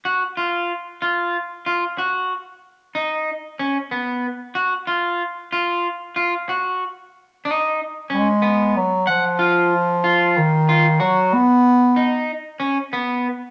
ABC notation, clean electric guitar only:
X:1
M:7/8
L:1/8
Q:1/4=93
K:Blyd
V:1 name="Clean electric guitar"
F E2 E2 E F- | F z D2 C B,2 | F E2 E2 E F- | F z D2 C B,2 |
f E2 E2 E F- | F z D2 C B,2 |]